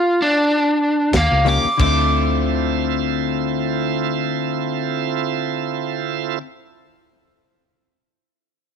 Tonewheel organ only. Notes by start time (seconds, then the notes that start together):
1.31 C#4 F4 G4 A#4
1.80 C4 E4 F4 A4